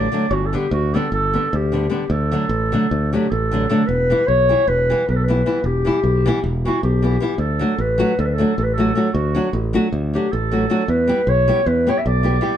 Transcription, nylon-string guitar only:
0.12 0.24 D3 medium
0.12 0.24 F#3 medium
0.12 0.25 A3 medium
0.12 0.25 D4 medium
0.53 0.65 D3 medium
0.53 0.65 G3 medium
0.53 0.66 B3 medium
0.53 0.66 D4 medium
0.94 1.06 D3 medium
0.94 1.06 G3 medium
0.94 1.07 B3 medium
0.94 1.07 D4 medium
1.33 1.46 D3 medium
1.33 1.46 G3 medium
1.33 1.47 B3 medium
1.33 1.47 D4 medium
1.72 1.85 D3 medium
1.72 1.85 G3 soft
1.72 1.86 B3 soft
1.72 1.85 D4 medium
1.90 2.03 D3 medium
1.90 2.03 G3 medium
1.90 2.03 B3 medium
1.90 2.03 D4 medium
2.31 2.44 D3 medium
2.31 2.44 F#3 medium
2.31 2.45 A3 medium
2.31 2.45 D4 medium
2.72 2.85 D3 medium
2.72 2.85 F#3 medium
2.72 2.85 A3 medium
2.72 2.85 D4 medium
3.13 3.25 D3 medium
3.13 3.26 F#3 medium
3.13 3.26 A3 medium
3.13 3.26 D4 medium
3.52 3.64 D3 medium
3.52 3.64 F#3 medium
3.52 3.65 A3 medium
3.52 3.65 D4 medium
3.70 3.82 D3 medium
3.70 3.82 F#3 medium
3.70 3.82 A3 medium
3.70 3.83 D4 medium
4.10 4.22 E3 medium
4.10 4.22 G3 medium
4.10 4.23 B3 medium
4.10 4.23 E4 medium
4.49 4.62 E3 medium
4.49 4.62 G3 medium
4.49 4.62 B3 medium
4.49 4.63 E4 medium
4.90 5.02 E3 medium
4.90 5.02 G3 medium
4.90 5.03 B3 medium
4.90 5.03 E4 medium
5.28 5.40 E3 medium
5.28 5.41 G3 medium
5.28 5.41 B3 medium
5.28 5.41 E4 medium
5.46 5.58 E3 medium
5.46 5.58 G3 medium
5.46 5.58 B3 medium
5.46 5.59 E4 medium
5.85 5.98 E3 medium
5.85 5.98 G3 medium
5.85 5.99 B3 medium
5.85 5.99 E4 medium
6.26 6.38 E3 medium
6.26 6.39 G3 medium
6.26 6.39 B3 medium
6.26 6.39 E4 medium
6.65 6.78 E3 medium
6.65 6.78 G3 medium
6.65 6.79 B3 medium
6.65 6.79 E4 medium
7.02 7.15 E3 medium
7.02 7.15 G3 soft
7.02 7.16 B3 medium
7.02 7.16 E4 medium
7.20 7.33 E3 medium
7.20 7.34 G3 medium
7.20 7.34 B3 medium
7.20 7.34 E4 medium
7.59 7.72 F#3 medium
7.59 7.73 A3 medium
7.59 7.73 D4 medium
7.59 7.73 F#4 medium
7.98 8.12 F#3 medium
7.98 8.12 A3 medium
7.98 8.12 D4 medium
7.98 8.12 F#4 medium
8.38 8.52 F#3 medium
8.38 8.52 A3 medium
8.38 8.53 D4 medium
8.38 8.53 F#4 medium
8.78 8.90 F#3 medium
8.78 8.90 A3 medium
8.78 8.91 D4 soft
8.78 8.91 F#4 medium
8.95 9.08 F#3 medium
8.95 9.08 A3 medium
8.95 9.08 D4 medium
8.95 9.09 F#4 medium
9.35 9.47 F#3 medium
9.35 9.47 A3 medium
9.35 9.48 D4 medium
9.35 9.48 F#4 medium
9.73 9.86 F#3 medium
9.73 9.86 A3 medium
9.73 9.86 D4 medium
9.73 9.87 F#4 medium
10.14 10.26 F#3 medium
10.14 10.27 A3 medium
10.14 10.27 D4 soft
10.14 10.27 F#4 medium
10.51 10.64 F#3 medium
10.51 10.64 A3 soft
10.51 10.64 D4 medium
10.51 10.64 F#4 medium
10.70 10.81 F#3 medium
10.70 10.81 A3 medium
10.70 10.82 D4 medium
10.70 10.82 F#4 medium
11.08 11.20 G3 medium
11.08 11.20 B3 medium
11.08 11.21 E4 medium
11.08 11.21 G4 medium
11.48 11.60 G3 medium
11.48 11.60 B3 medium
11.48 11.60 E4 medium
11.48 11.61 G4 medium
11.87 11.99 G3 medium
11.87 11.99 B3 medium
11.87 11.99 E4 medium
11.87 12.00 G4 medium
12.23 12.36 G3 medium
12.23 12.36 B3 medium
12.23 12.36 E4 medium
12.23 12.37 G4 medium
12.41 12.53 G3 medium
12.41 12.53 B3 medium
12.41 12.54 E4 medium
12.41 12.54 G4 medium

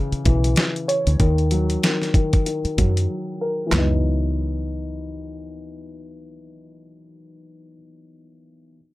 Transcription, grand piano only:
0.00 1.22 C#3 medium
0.00 0.24 E3 medium
0.25 1.20 E3 medium
0.88 1.20 C#5 medium
1.20 1.83 D#3 medium
1.51 2.76 F#3 medium
1.84 2.14 D#3 medium
2.15 2.45 D#3 medium
2.46 3.72 D#3 medium
2.78 3.69 F#3 medium
3.41 3.73 A#4 medium
3.67 7.68 E3 medium
3.71 7.70 F#3 medium
3.75 7.72 B3 medium
3.75 7.74 D#4 medium

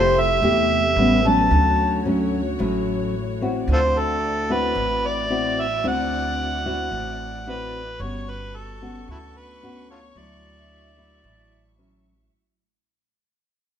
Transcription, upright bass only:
0.00 0.39 F1 medium
0.42 0.93 E2 medium
0.96 1.47 A1 loud
1.51 2.55 D2 medium
2.59 3.63 A1 medium
3.67 4.72 D2 medium
4.75 5.80 A1 medium
5.84 6.88 D2 medium
6.92 7.96 A1 medium
8.00 9.04 G1 loud
9.08 10.12 D2 medium
10.16 11.20 D2 medium
11.24 12.28 A1 medium

